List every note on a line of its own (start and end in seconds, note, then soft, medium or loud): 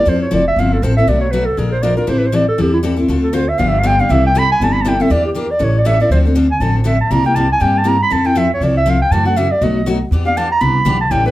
0.00 0.11 D5 loud
0.06 0.26 F2 medium
0.06 0.24 F3 medium
0.06 0.25 C4 medium
0.06 0.25 E4 medium
0.06 0.25 A4 medium
0.06 0.22 C5 medium
0.22 0.35 C#5 medium
0.31 0.53 F1 medium
0.31 0.42 F3 medium
0.31 0.42 C4 medium
0.31 0.42 E4 medium
0.31 0.42 A4 medium
0.31 0.47 D5 loud
0.48 0.61 E5 loud
0.56 0.78 G1 medium
0.56 0.76 F3 medium
0.56 0.76 C4 medium
0.56 0.76 E4 medium
0.56 0.76 A4 medium
0.56 0.75 F5 medium
0.73 0.85 A4 medium
0.82 1.04 A1 medium
0.82 0.93 F3 medium
0.82 0.93 C4 medium
0.82 0.93 E4 medium
0.82 0.94 A4 loud
0.82 0.96 C5 medium
0.97 1.07 C4 medium
0.97 1.07 E4 medium
0.97 1.08 A4 medium
0.97 1.10 E5 loud
1.07 1.48 B1 medium
1.07 1.26 B2 medium
1.07 1.26 F#3 medium
1.07 1.26 A3 medium
1.07 1.26 D4 medium
1.07 1.26 F#4 medium
1.07 1.20 D5 medium
1.21 1.33 C#5 medium
1.32 1.43 B2 medium
1.32 1.43 F#3 medium
1.32 1.44 A3 medium
1.32 1.44 D4 medium
1.32 1.44 F#4 medium
1.32 1.47 B4 medium
1.45 1.60 A4 medium
1.57 1.98 A#1 medium
1.57 1.76 F3 medium
1.57 1.76 G#3 medium
1.57 1.77 D4 medium
1.57 1.76 F4 medium
1.57 1.71 G#4 medium
1.57 1.77 A#4 medium
1.72 1.84 C5 medium
1.83 1.93 F3 medium
1.83 1.93 G#3 medium
1.83 1.94 D4 loud
1.83 1.94 F4 medium
1.83 1.94 A#4 medium
1.83 1.96 D5 medium
1.97 2.07 D4 soft
1.97 2.07 F4 soft
1.97 2.07 A#4 medium
1.97 2.11 A#4 medium
2.07 2.48 A1 medium
2.07 2.26 E3 medium
2.07 2.26 G3 medium
2.07 2.26 C4 medium
2.07 2.26 E4 medium
2.07 2.26 A4 medium
2.07 2.20 C5 medium
2.18 2.28 B4 medium
2.26 2.37 C5 medium
2.32 2.43 E3 medium
2.32 2.44 G3 medium
2.32 2.44 C4 medium
2.32 2.44 E4 medium
2.32 2.44 A4 medium
2.32 2.48 D5 loud
2.49 2.62 A4 medium
2.58 2.99 E2 medium
2.58 2.77 E3 medium
2.58 2.77 G3 medium
2.58 2.77 C4 medium
2.58 2.77 E4 medium
2.58 2.74 G4 medium
2.58 2.77 A4 medium
2.74 2.80 E4 medium
2.83 2.94 E3 medium
2.83 2.94 G3 medium
2.83 2.94 C4 medium
2.83 2.94 E4 medium
2.83 2.95 A4 loud
2.96 3.09 C4 soft
2.96 3.08 E4 medium
2.96 3.08 A4 medium
3.08 3.49 D2 medium
3.08 3.27 D3 medium
3.08 3.28 A3 medium
3.08 3.28 C4 medium
3.08 3.28 F4 medium
3.08 3.28 A4 medium
3.24 3.36 A4 medium
3.33 3.44 D3 medium
3.33 3.44 A3 medium
3.33 3.44 C4 loud
3.33 3.44 F4 medium
3.33 3.45 A4 medium
3.33 3.51 C5 medium
3.49 3.60 E5 loud
3.58 4.00 G1 loud
3.58 3.77 D3 medium
3.58 3.78 F3 medium
3.58 3.78 B3 medium
3.58 3.78 D4 medium
3.58 3.78 G4 medium
3.58 3.70 F5 loud
3.68 3.80 E5 medium
3.79 3.88 F5 medium
3.83 3.94 D3 medium
3.83 3.95 F3 loud
3.83 3.94 B3 loud
3.83 3.95 D4 loud
3.83 3.95 G4 loud
3.83 4.02 G5 loud
3.99 4.10 B3 soft
3.99 4.10 D4 medium
3.99 4.09 G4 medium
3.99 4.13 F5 medium
4.09 4.50 C2 medium
4.09 4.28 C3 medium
4.09 4.28 E3 medium
4.09 4.28 G3 medium
4.09 4.28 C4 medium
4.09 4.28 E4 medium
4.09 4.29 A4 medium
4.09 4.25 E5 medium
4.27 4.40 G5 loud
4.35 4.45 C3 medium
4.35 4.46 E3 medium
4.35 4.46 G3 medium
4.35 4.46 C4 medium
4.35 4.46 E4 loud
4.35 4.46 A4 loud
4.35 4.51 B5 loud
4.52 4.65 G#5 loud
4.60 5.00 G1 medium
4.60 4.79 C3 medium
4.60 4.79 E3 medium
4.60 4.79 G3 medium
4.60 4.79 C4 medium
4.60 4.79 E4 medium
4.60 4.80 A4 medium
4.60 4.74 A5 loud
4.73 4.83 B5 loud
4.82 4.95 C3 loud
4.82 4.96 E3 loud
4.82 4.96 G3 medium
4.82 4.96 C4 loud
4.82 4.90 A5 medium
4.86 4.96 E4 loud
4.86 4.96 A4 loud
4.86 5.03 G5 loud
5.00 5.10 G3 medium
5.00 5.10 C4 medium
5.00 5.10 E4 medium
5.00 5.10 A4 medium
5.00 5.13 E5 medium
5.10 5.50 E2 medium
5.10 5.28 E3 medium
5.10 5.29 A#3 medium
5.10 5.29 D4 medium
5.10 5.29 G4 medium
5.10 5.25 D5 loud
5.25 5.38 G4 medium
5.35 5.45 E3 medium
5.35 5.46 A#3 loud
5.35 5.46 D4 loud
5.35 5.46 G4 loud
5.35 5.52 A#4 loud
5.51 5.65 D5 loud
5.59 6.00 A1 loud
5.59 5.78 E3 medium
5.59 5.78 G3 medium
5.59 5.78 C#4 medium
5.59 5.79 E4 medium
5.59 5.79 A4 medium
5.64 5.80 C#5 medium
5.78 5.88 D5 loud
5.85 5.96 E3 medium
5.85 5.96 G3 medium
5.85 5.96 C#4 loud
5.85 5.96 E4 medium
5.85 5.96 A4 loud
5.85 6.01 E5 loud
6.00 6.11 C#4 medium
6.00 6.11 E4 medium
6.00 6.10 A4 medium
6.00 6.11 D5 loud
6.09 6.50 D2 medium
6.09 6.25 D3 medium
6.09 6.25 F3 medium
6.09 6.25 C4 medium
6.09 6.25 D4 medium
6.09 6.24 A4 medium
6.09 6.20 C5 medium
6.25 6.35 C4 soft
6.25 6.34 D4 medium
6.25 6.35 A4 medium
6.35 6.46 D3 medium
6.35 6.46 F3 medium
6.35 6.46 C4 medium
6.35 6.46 D4 loud
6.35 6.46 A4 medium
6.51 6.62 G#5 medium
6.60 7.00 A1 medium
6.60 6.79 D3 medium
6.60 6.79 F3 medium
6.60 6.79 C4 medium
6.60 6.79 D4 medium
6.60 6.80 A4 medium
6.60 6.75 A5 medium
6.78 6.88 C5 medium
6.84 6.95 D3 medium
6.84 6.96 F3 medium
6.84 6.96 C4 medium
6.84 6.96 D4 loud
6.84 6.96 A4 medium
6.84 7.01 E5 loud
7.01 7.13 A5 medium
7.11 7.51 C2 medium
7.11 7.25 C3 medium
7.11 7.25 G3 medium
7.11 7.25 A#3 medium
7.11 7.24 E4 medium
7.11 7.23 G4 medium
7.11 7.26 A#5 loud
7.24 7.35 A#3 soft
7.24 7.35 E4 medium
7.24 7.35 G4 medium
7.24 7.37 G5 loud
7.36 7.46 C3 medium
7.36 7.46 G3 medium
7.36 7.46 A#3 medium
7.36 7.47 E4 medium
7.36 7.47 G4 loud
7.36 7.50 A5 loud
7.52 7.63 G#5 loud
7.60 8.01 G2 medium
7.60 7.79 C3 medium
7.60 7.79 G3 medium
7.60 7.79 A#3 medium
7.60 7.79 E4 medium
7.60 7.79 G4 medium
7.60 7.79 G5 medium
7.78 7.89 A5 loud
7.84 7.95 C3 medium
7.84 7.96 G3 medium
7.84 7.96 A#3 medium
7.84 7.96 E4 medium
7.84 7.96 G4 medium
7.84 8.01 A#5 loud
8.03 8.14 B5 loud
8.10 8.51 F2 medium
8.10 8.25 F3 medium
8.10 8.25 C4 medium
8.10 8.24 E4 medium
8.10 8.23 A4 medium
8.10 8.28 A5 medium
8.25 8.34 C4 soft
8.25 8.35 E4 medium
8.25 8.35 A4 medium
8.25 8.39 G5 loud
8.35 8.46 F3 medium
8.35 8.46 C4 medium
8.35 8.46 E4 medium
8.35 8.47 A4 loud
8.35 8.51 E5 medium
8.54 8.65 C#5 loud
8.60 9.01 C2 medium
8.60 8.80 F3 medium
8.60 8.80 C4 medium
8.60 8.80 E4 medium
8.60 8.80 A4 medium
8.60 8.77 D5 medium
8.77 8.91 E5 loud
8.86 8.96 F3 medium
8.86 8.96 C4 loud
8.86 8.97 E4 medium
8.86 8.97 A4 medium
8.90 9.01 F5 medium
9.02 9.13 G5 loud
9.11 9.51 F#2 medium
9.11 9.25 C#3 medium
9.11 9.26 E3 medium
9.11 9.26 A3 medium
9.11 9.25 C#4 medium
9.11 9.24 F#4 medium
9.11 9.26 A5 loud
9.25 9.36 A3 soft
9.25 9.36 C#4 soft
9.25 9.36 F#4 medium
9.25 9.39 F#5 loud
9.36 9.47 C#3 medium
9.36 9.47 E3 medium
9.36 9.47 A3 medium
9.36 9.47 C#4 medium
9.36 9.47 F#4 loud
9.36 9.53 E5 loud
9.52 9.65 D5 loud
9.61 10.01 B1 medium
9.61 9.80 B2 medium
9.61 9.80 F#3 medium
9.61 9.80 A3 medium
9.61 9.80 D#4 medium
9.61 9.80 F#4 medium
9.61 9.87 D#5 medium
9.86 9.97 B2 medium
9.86 9.97 F#3 loud
9.86 9.97 A3 medium
9.86 9.97 D#4 medium
9.86 9.97 F#4 loud
10.11 10.51 E2 medium
10.11 10.26 E3 medium
10.11 10.26 B3 medium
10.11 10.25 D4 medium
10.11 10.24 G4 medium
10.25 10.36 B3 soft
10.25 10.36 D4 medium
10.25 10.36 G4 medium
10.25 10.39 F5 loud
10.37 10.47 E3 medium
10.37 10.47 B3 medium
10.37 10.47 D4 loud
10.37 10.47 G4 loud
10.37 10.51 A5 loud
10.52 10.63 A#5 loud
10.61 10.83 C2 medium
10.61 10.79 E3 medium
10.61 10.79 B3 medium
10.61 10.79 D4 medium
10.61 10.79 G4 medium
10.61 11.01 B5 loud
10.85 11.07 B1 loud
10.85 10.96 E3 medium
10.85 10.96 B3 medium
10.85 10.97 D4 loud
10.85 10.97 G4 loud
11.01 11.13 A5 loud
11.11 11.31 A1 medium
11.11 11.25 E3 medium
11.11 11.25 G3 medium
11.11 11.25 C#4 medium
11.11 11.25 E4 medium
11.11 11.24 A4 medium
11.11 11.26 G5 medium
11.26 11.31 E4 medium
11.26 11.31 A4 medium
11.26 11.31 B4 medium